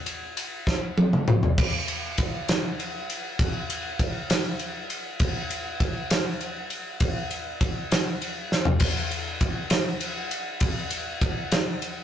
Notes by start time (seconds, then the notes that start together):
0.06 ride
0.37 ride
0.67 kick, snare
0.98 high tom
1.13 mid tom
1.28 mid tom
1.43 floor tom
1.58 kick, crash
1.88 ride
2.18 kick, ride
2.48 snare, ride
2.80 ride
3.10 ride
3.39 kick, ride
3.70 ride
3.99 kick, ride
4.30 snare, ride
4.59 ride
4.90 ride
5.20 kick, ride
5.51 ride
5.80 kick, ride
6.10 snare, ride
6.41 ride
6.70 ride
7.00 kick, ride
7.31 ride
7.61 kick, ride
7.92 snare, ride
8.22 ride
8.52 snare
8.65 floor tom
8.80 kick, ride, crash
9.11 ride
9.41 kick, ride
9.70 snare, ride
10.01 ride
10.31 ride
10.60 kick, ride
10.90 ride
11.21 kick, ride
11.52 snare, ride
11.82 ride